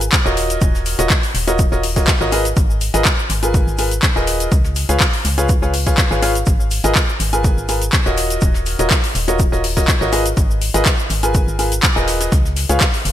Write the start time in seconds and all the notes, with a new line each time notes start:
0.01 closed hi-hat, shaker
0.12 kick, snare, clap, closed hi-hat, shaker
0.25 D#1 F4 F#4 A#4 C#5 D#5, closed hi-hat, shaker
0.37 open hi-hat, shaker
0.50 closed hi-hat, shaker
0.61 D#1, kick, closed hi-hat, shaker
0.75 snare, shaker
0.86 snare, open hi-hat, shaker
0.99 D#1 F4 F#4 A#4 C#5 D#5, closed hi-hat, shaker
1.10 kick, snare, clap, closed hi-hat, shaker
1.23 open hi-hat, shaker
1.35 D#1, open hi-hat, shaker
1.47 F4 F#4 A#4 C#5 D#5, closed hi-hat, shaker
1.59 kick, closed hi-hat, shaker
1.72 D#1 F4 F#4 A#4 C#5 D#5, closed hi-hat, shaker
1.83 open hi-hat
1.96 F4 F#4 A#4 C#5 D#5, kick, snare, closed hi-hat, shaker
2.07 kick, snare, clap, closed hi-hat, shaker
2.21 G#1 F4 F#4 A#4 C#5 D#5, shaker
2.32 F4 G#4 A#4 B4 D#5, open hi-hat, shaker
2.45 closed hi-hat, shaker
2.57 G#1, kick, closed hi-hat, shaker
2.70 shaker
2.81 open hi-hat, shaker
2.94 G#1 F4 G#4 A#4 B4 D#5, snare, closed hi-hat, shaker
3.05 kick, snare, clap, closed hi-hat, shaker
3.19 shaker
3.30 G#1, open hi-hat, shaker
3.43 F4 G#4 A#4 B4 G#5, closed hi-hat, shaker
3.54 kick, closed hi-hat, shaker
3.67 G#1, shaker
3.78 F4 G#4 A#4 B4 G#5, open hi-hat, shaker
3.91 closed hi-hat, shaker
4.03 kick, snare, clap, closed hi-hat, shaker
4.16 D#1 F4 G#4 A#4 B4 D#5, closed hi-hat, shaker
4.27 open hi-hat, shaker
4.40 closed hi-hat, shaker
4.52 C#2, kick, closed hi-hat, shaker
4.64 snare, shaker
4.75 snare, open hi-hat, shaker
4.89 C#2 F4 G#4 B4 C#5 F5, closed hi-hat, shaker
5.00 kick, snare, clap, closed hi-hat, shaker
5.13 open hi-hat, shaker
5.25 C#2, open hi-hat, shaker
5.38 F4 G#4 B4 C#5 F5, closed hi-hat, shaker
5.49 kick, closed hi-hat, shaker
5.62 C#2 F4 G#4 B4 C#5 F5, closed hi-hat, shaker
5.74 open hi-hat
5.87 F4 G#4 B4 C#5 F5, kick, snare, closed hi-hat, shaker
5.98 kick, snare, clap, closed hi-hat, shaker
6.11 G#1 F4 G#4 B4 C#5 F5, shaker
6.22 F4 G#4 B4 C#5 F5, open hi-hat, shaker
6.35 closed hi-hat, shaker
6.46 G#1, kick, closed hi-hat, shaker
6.48 shaker
6.60 shaker
6.71 open hi-hat, shaker
6.84 G#1 F4 G#4 A#4 B4 D#5, snare, closed hi-hat, shaker
6.95 kick, snare, clap, closed hi-hat, shaker
7.09 shaker
7.20 G#1, open hi-hat, shaker
7.33 F4 G#4 A#4 B4 G#5, closed hi-hat, shaker
7.44 kick, closed hi-hat, shaker
7.57 G#1, shaker
7.69 F4 G#4 A#4 B4 G#5, open hi-hat, shaker
7.82 closed hi-hat, shaker
7.93 kick, snare, clap, closed hi-hat, shaker
8.05 D#1 F4 F#4 A#4 C#5 D#5, closed hi-hat, shaker
8.17 open hi-hat, shaker
8.30 closed hi-hat, shaker
8.41 D#1, kick, closed hi-hat, shaker
8.54 snare, shaker
8.66 snare, open hi-hat, shaker
8.79 D#1 F4 F#4 A#4 C#5 D#5, closed hi-hat, shaker
8.90 kick, snare, clap, closed hi-hat, shaker
9.04 open hi-hat, shaker
9.15 D#1, open hi-hat, shaker
9.28 F4 F#4 A#4 C#5 D#5, closed hi-hat, shaker
9.39 kick, closed hi-hat, shaker
9.52 D#1 F4 F#4 A#4 C#5 D#5, closed hi-hat, shaker
9.64 open hi-hat
9.77 F4 F#4 A#4 C#5 D#5, kick, snare, closed hi-hat, shaker
9.88 kick, snare, clap, closed hi-hat, shaker
10.01 G#1 F4 F#4 A#4 C#5 D#5, shaker
10.12 F4 G#4 A#4 B4 D#5, open hi-hat, shaker
10.26 closed hi-hat, shaker
10.37 G#1, kick, closed hi-hat, shaker
10.51 shaker
10.62 open hi-hat, shaker
10.74 G#1 F4 G#4 A#4 B4 D#5, snare, closed hi-hat, shaker
10.86 kick, snare, clap, closed hi-hat, shaker
10.99 shaker
11.10 G#1, open hi-hat, shaker
11.23 F4 G#4 A#4 B4 G#5, closed hi-hat, shaker
11.34 kick, closed hi-hat, shaker
11.47 G#1, shaker
11.59 F4 G#4 A#4 B4 G#5, open hi-hat, shaker
11.72 closed hi-hat, shaker
11.83 kick, snare, clap, closed hi-hat, shaker
11.96 D#1 F4 G#4 A#4 B4 D#5, closed hi-hat, shaker
12.08 snare, open hi-hat, shaker
12.21 snare, closed hi-hat, shaker
12.32 C#2, kick, snare, closed hi-hat, shaker
12.45 snare, shaker
12.56 snare, open hi-hat, shaker
12.69 C#2 F4 G#4 B4 C#5 F5, closed hi-hat, shaker
12.81 kick, snare, clap, closed hi-hat, shaker
12.94 open hi-hat, shaker
13.05 F#1, open hi-hat, shaker